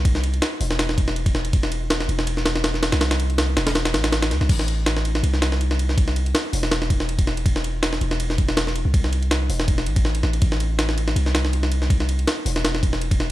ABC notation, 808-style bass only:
X:1
M:4/4
L:1/16
Q:"Swing 16ths" 1/4=162
K:Am
V:1 name="808-style bass" clef=bass
C,,4 z2 E,,,8- E,,,2- | E,,,6 E,,,8- E,,, C,,- | C,,6 E,,,4 A,,,4 D,, C,, | A,,,8 C,,8- |
C,,4 z2 E,,,8- E,,,2- | E,,,6 E,,,8- E,,, C,,- | C,,6 E,,,4 A,,,4 A,,,2 | A,,,8 C,,8- |
C,,4 z2 E,,,8- E,,,2 |]